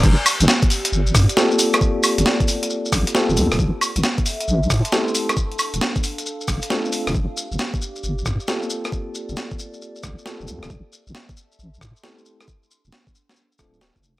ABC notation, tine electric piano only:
X:1
M:4/4
L:1/8
Q:"Swing 16ths" 1/4=135
K:Gdor
V:1 name="Tine electric piano"
z6 [B,CFGA]2- | [B,CFGA]6 [B,CFGA]2 | z6 [A,CEGA]2 | z6 [A,CDFA]2 |
z6 [B,CFGA]2- | [B,CFGA]6 [B,CFGA]2 | z6 [A,CEGA]2 | z4 z [A,CDFA] z2 |]